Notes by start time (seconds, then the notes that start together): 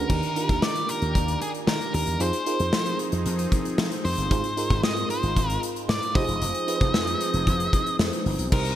Already playing: C#4 D4 F#4 G#4 A#4 B4
0.09 D#2 D#3 A#3 D4 D#4 G4 A#4 D5, kick, crash
0.23 closed hi-hat
0.36 D4 D#4 F4 A#4, closed hi-hat
0.43 G4
0.49 D#2, kick, closed hi-hat
0.62 D#3 D5, snare
0.76 closed hi-hat
0.89 A#4, closed hi-hat
1.02 D#2, closed hi-hat
1.15 D#2, kick, closed hi-hat
1.28 closed hi-hat
1.41 G#4, closed hi-hat
1.55 closed hi-hat
1.67 D#3 A#4, snare
1.81 closed hi-hat
1.94 D#2 A#4, open hi-hat
2.07 E2, closed hi-hat
2.20 F2 F3 C4 D#4 F4 G#4 C5, closed hi-hat
2.33 closed hi-hat
2.46 D#4 F4 G#4 A#4, closed hi-hat
2.54 C5
2.60 F2, closed hi-hat
2.73 F3, snare
2.86 closed hi-hat
2.99 closed hi-hat
3.12 F2, closed hi-hat
3.26 F2, closed hi-hat
3.39 closed hi-hat
3.52 kick, closed hi-hat
3.65 closed hi-hat
3.78 F3, snare
3.92 closed hi-hat
4.05 F2 C5, open hi-hat
4.18 G1, closed hi-hat
4.30 G#1 G#2 G#3 D#4 F4 G#4 C5, kick, closed hi-hat
4.44 closed hi-hat
4.57 D#4 F4 G#4 A#4, closed hi-hat
4.70 G#1, kick, closed hi-hat
4.83 G#2 D#5, snare
4.97 closed hi-hat
5.10 C5, closed hi-hat
5.23 G#1, closed hi-hat
5.36 G#1, kick, closed hi-hat
5.50 closed hi-hat
5.63 closed hi-hat
5.76 closed hi-hat
5.89 G#2 D5, snare
6.03 closed hi-hat
6.15 F1 F3 C4 D#4 F4 G4 G#4 C5 D#5, kick, open hi-hat
6.22 G#4
6.28 E1, closed hi-hat
6.42 F1, closed hi-hat
6.54 closed hi-hat
6.67 D#4 F4 G#4 B4, closed hi-hat
6.75 C5
6.81 F1, kick, closed hi-hat
6.94 F2, snare
7.07 closed hi-hat
7.21 closed hi-hat
7.34 F1, closed hi-hat
7.47 F1, kick, closed hi-hat
7.60 closed hi-hat
7.73 kick, closed hi-hat
7.86 closed hi-hat
7.99 F2, snare
8.13 closed hi-hat
8.26 G1, open hi-hat
8.39 B1, closed hi-hat
8.52 C2 C3 G3 A#3 D#4 G4 A#4 C5, kick, crash
8.65 closed hi-hat